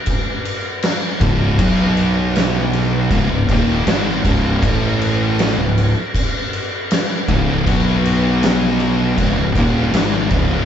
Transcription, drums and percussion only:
0.06 kick, crash
0.45 crash
0.82 snare, crash
1.21 kick, crash
1.59 kick, crash
1.97 crash
2.36 snare, crash
2.73 crash
3.11 kick, crash
3.49 kick, crash
3.87 snare, crash
4.25 kick, crash
4.63 kick, crash
5.02 crash
5.39 snare, crash
5.78 crash
6.15 kick, crash
6.53 crash
6.91 snare, crash
7.29 kick, crash
7.67 kick, crash
8.05 crash
8.43 snare, crash
8.80 crash
9.18 kick, crash
9.56 kick, crash
9.94 snare, crash
10.30 kick, crash

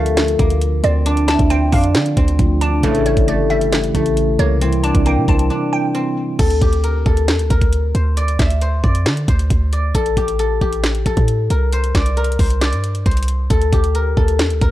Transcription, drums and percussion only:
0.06 closed hi-hat
0.17 snare, clap, closed hi-hat
0.28 closed hi-hat
0.39 kick, closed hi-hat
0.50 closed hi-hat
0.61 closed hi-hat
0.84 closed hi-hat
1.06 closed hi-hat
1.17 closed hi-hat
1.28 snare, clap, closed hi-hat
1.39 kick, closed hi-hat
1.50 closed hi-hat
1.72 kick, open hi-hat
1.84 closed hi-hat
1.95 snare, clap, closed hi-hat
2.06 closed hi-hat
2.17 kick, closed hi-hat
2.28 closed hi-hat
2.39 kick, closed hi-hat
2.61 closed hi-hat
2.84 kick, closed hi-hat
2.95 closed hi-hat
3.06 closed hi-hat
3.17 kick, closed hi-hat
3.28 closed hi-hat
3.61 closed hi-hat
3.72 snare, clap, closed hi-hat
3.84 closed hi-hat
3.95 kick, closed hi-hat
4.06 closed hi-hat
4.17 closed hi-hat
4.39 closed hi-hat
4.61 closed hi-hat
4.73 closed hi-hat
4.84 closed hi-hat
4.95 kick, closed hi-hat
5.06 closed hi-hat
5.28 kick
5.39 closed hi-hat
6.39 kick, closed hi-hat, crash
6.50 closed hi-hat
6.61 kick, closed hi-hat
6.73 closed hi-hat
6.84 closed hi-hat
7.06 kick
7.17 closed hi-hat
7.28 snare, clap, closed hi-hat
7.39 closed hi-hat
7.50 kick, closed hi-hat
7.61 kick, closed hi-hat
7.73 closed hi-hat
7.95 closed hi-hat
8.17 closed hi-hat
8.28 closed hi-hat
8.39 kick, snare, clap, closed hi-hat
8.50 closed hi-hat
8.61 closed hi-hat
8.84 kick
8.95 closed hi-hat
9.06 snare, clap, closed hi-hat
9.17 closed hi-hat
9.28 kick, closed hi-hat
9.39 closed hi-hat
9.50 kick, closed hi-hat
9.73 closed hi-hat
9.95 kick, closed hi-hat
10.06 closed hi-hat
10.17 kick, closed hi-hat
10.28 closed hi-hat
10.39 closed hi-hat
10.61 kick
10.73 closed hi-hat
10.84 snare, clap, closed hi-hat
10.95 closed hi-hat
11.06 kick, closed hi-hat
11.17 kick, closed hi-hat
11.28 closed hi-hat
11.50 closed hi-hat
11.72 closed hi-hat
11.84 closed hi-hat
11.95 kick, snare, clap, closed hi-hat
12.06 closed hi-hat
12.17 closed hi-hat
12.24 closed hi-hat
12.32 closed hi-hat
12.39 kick, open hi-hat
12.50 closed hi-hat
12.61 snare, clap, closed hi-hat
12.73 closed hi-hat
12.84 closed hi-hat
12.95 closed hi-hat
13.06 kick, closed hi-hat
13.11 closed hi-hat
13.17 closed hi-hat
13.23 closed hi-hat
13.28 closed hi-hat
13.50 kick, closed hi-hat
13.62 closed hi-hat
13.73 kick, closed hi-hat
13.84 closed hi-hat
13.95 closed hi-hat
14.17 kick
14.28 closed hi-hat
14.39 snare, clap, closed hi-hat
14.50 closed hi-hat
14.61 kick, closed hi-hat

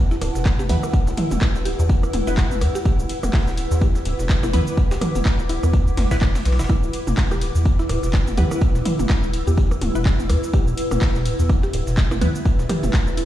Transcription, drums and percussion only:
0.11 snare, cabasa
0.21 open hi-hat, tambourine, percussion blips
0.35 snare, cabasa
0.45 kick, snare, clap, tambourine
0.59 closed hi-hat, high tom, cabasa
0.69 open hi-hat, mid tom, tambourine
0.83 percussion blips, cabasa
0.93 kick, tambourine
1.07 snare, cabasa
1.17 open hi-hat, mid tom, tambourine
1.31 closed hi-hat, high tom, cabasa
1.41 kick, snare, clap, tambourine, percussion blips
1.55 cabasa
1.65 open hi-hat, tambourine
1.79 cabasa
1.89 kick, tambourine
2.03 percussion blips, cabasa
2.13 open hi-hat, high tom, tambourine
2.27 cabasa
2.37 kick, snare, clap, tambourine
2.51 high tom, cabasa
2.61 open hi-hat, tambourine, percussion blips
2.75 snare, cabasa
2.85 kick, tambourine
2.99 cabasa
3.09 open hi-hat, tambourine
3.23 snare, high tom, percussion blips, cabasa
3.33 kick, snare, clap, open hi-hat
3.47 snare, cabasa
3.57 open hi-hat, tambourine
3.71 snare, cabasa
3.81 kick, tambourine, percussion blips
3.95 snare, cabasa
4.05 open hi-hat, tambourine
4.19 snare, cabasa
4.29 kick, snare, clap, tambourine
4.43 closed hi-hat, high tom, percussion blips, cabasa
4.53 open hi-hat, mid tom, tambourine
4.67 cabasa
4.77 kick, tambourine
4.91 snare, tambourine, cabasa
5.01 open hi-hat, mid tom, percussion blips
5.15 high tom, tambourine, cabasa
5.25 kick, snare, clap, tambourine
5.39 cabasa
5.49 open hi-hat, tambourine
5.63 percussion blips, cabasa
5.73 kick, tambourine
5.87 cabasa
5.97 snare, open hi-hat, high tom
6.11 kick, snare, open hi-hat, cabasa
6.21 kick, snare, clap, open hi-hat, percussion blips
6.35 snare, open hi-hat, high tom, cabasa
6.45 snare, open hi-hat
6.52 snare, open hi-hat
6.59 snare, open hi-hat, cabasa
6.64 snare, open hi-hat
6.69 kick, tambourine, percussion blips
6.83 cabasa
6.93 open hi-hat, tambourine
7.07 snare, high tom, cabasa
7.17 kick, snare, clap, open hi-hat
7.31 snare, percussion blips, cabasa
7.41 open hi-hat, tambourine
7.55 snare, cabasa
7.65 kick, tambourine
7.79 snare, cabasa
7.89 open hi-hat, tambourine, percussion blips
8.03 snare, cabasa
8.13 kick, snare, clap, tambourine
8.27 closed hi-hat, high tom, cabasa
8.37 open hi-hat, mid tom, tambourine
8.51 percussion blips, cabasa
8.61 kick, tambourine
8.75 snare, cabasa
8.85 open hi-hat, mid tom, tambourine
8.99 closed hi-hat, high tom, cabasa
9.09 kick, snare, clap, tambourine, percussion blips
9.23 cabasa
9.33 open hi-hat, tambourine
9.47 cabasa
9.57 kick, tambourine
9.71 percussion blips, cabasa
9.81 open hi-hat, high tom, tambourine
9.95 cabasa
10.05 kick, snare, clap, tambourine
10.19 high tom, cabasa
10.29 open hi-hat, tambourine, percussion blips
10.43 snare, cabasa
10.53 kick, tambourine
10.67 cabasa
10.77 open hi-hat, tambourine
10.91 snare, high tom, percussion blips, cabasa
11.01 kick, snare, clap, open hi-hat
11.15 snare, cabasa
11.25 open hi-hat, tambourine
11.39 snare, cabasa
11.49 kick, tambourine, percussion blips
11.63 snare, cabasa
11.73 open hi-hat, tambourine
11.87 snare, cabasa
11.97 kick, snare, clap, tambourine
12.11 closed hi-hat, high tom, percussion blips, cabasa
12.21 open hi-hat, mid tom, tambourine
12.35 cabasa
12.45 kick, tambourine
12.59 snare, cabasa
12.69 open hi-hat, mid tom, tambourine, percussion blips
12.83 closed hi-hat, high tom, cabasa
12.93 kick, snare, clap, tambourine
13.07 cabasa
13.17 open hi-hat, tambourine

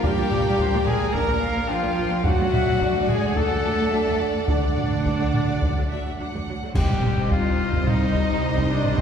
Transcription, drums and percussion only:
0.04 taiko
0.31 taiko low-mid
0.45 taiko low-mid
0.59 taiko
0.87 taiko low-mid
1.14 taiko
2.25 taiko
2.53 taiko low-mid
2.67 taiko low-mid
2.81 taiko
3.08 taiko low-mid
3.36 taiko
4.48 taiko
4.77 taiko low-mid
4.91 taiko low-mid
5.05 taiko
5.34 taiko low-mid
5.62 taiko
6.75 concert bass drum, taiko, crash
6.90 taiko low-mid
7.04 taiko low-mid
7.18 taiko low-mid
7.32 taiko
7.73 taiko
7.87 taiko low-mid
8.15 taiko
8.57 taiko
8.85 taiko low-mid
8.98 taiko

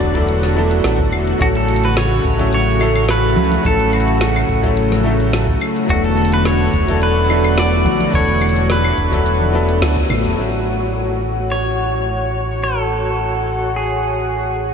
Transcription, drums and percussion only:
0.00 kick, closed hi-hat, shaker
0.15 kick, closed hi-hat, shaker
0.28 closed hi-hat, shaker
0.43 snare
0.57 shaker
0.71 closed hi-hat, shaker
0.84 snare, closed hi-hat, shaker
0.99 kick, shaker
1.12 closed hi-hat, claves, shaker
1.27 closed hi-hat, shaker
1.41 kick, closed hi-hat, shaker
1.55 closed hi-hat, shaker
1.68 closed hi-hat, shaker
1.76 closed hi-hat
1.84 closed hi-hat, shaker
1.97 snare, closed hi-hat, shaker
2.12 shaker
2.25 kick, closed hi-hat, shaker
2.39 kick, closed hi-hat, shaker
2.53 closed hi-hat, shaker
2.81 claves, shaker
2.96 closed hi-hat, claves, shaker
3.09 snare, closed hi-hat, shaker
3.36 closed hi-hat, high conga, shaker
3.51 closed hi-hat, high conga, shaker
3.65 kick, closed hi-hat, shaker
3.80 closed hi-hat, shaker
3.93 closed hi-hat, claves, shaker
4.00 closed hi-hat
4.08 closed hi-hat, shaker
4.21 snare, closed hi-hat, shaker
4.36 claves, shaker
4.49 kick, closed hi-hat, shaker
4.64 kick, closed hi-hat, shaker
4.77 closed hi-hat, shaker
4.91 snare, high conga
5.05 shaker
5.20 closed hi-hat, shaker
5.33 snare, closed hi-hat, shaker
5.48 kick, shaker
5.61 closed hi-hat, claves, shaker
5.76 closed hi-hat, shaker
5.89 kick, closed hi-hat, shaker
6.04 closed hi-hat, shaker
6.17 closed hi-hat, shaker
6.25 closed hi-hat
6.32 closed hi-hat, shaker
6.45 snare, closed hi-hat, shaker
6.61 shaker
6.74 kick, closed hi-hat, shaker
6.88 kick, closed hi-hat, shaker
7.02 closed hi-hat, shaker
7.30 claves, shaker
7.44 closed hi-hat, claves, shaker
7.58 snare, closed hi-hat, shaker
7.85 closed hi-hat, high conga, shaker
8.00 closed hi-hat, high conga, shaker
8.14 kick, closed hi-hat, shaker
8.28 closed hi-hat, shaker
8.41 closed hi-hat, claves, shaker
8.49 closed hi-hat
8.56 closed hi-hat, shaker
8.70 snare, closed hi-hat, shaker
8.84 claves, shaker
8.98 kick, closed hi-hat, shaker
9.13 kick, closed hi-hat, shaker
9.26 closed hi-hat, shaker
9.40 high conga, shaker
9.54 shaker
9.69 closed hi-hat, shaker
9.82 snare, closed hi-hat, shaker
9.97 kick, shaker
10.10 closed hi-hat, low conga, claves, shaker
10.25 closed hi-hat, shaker

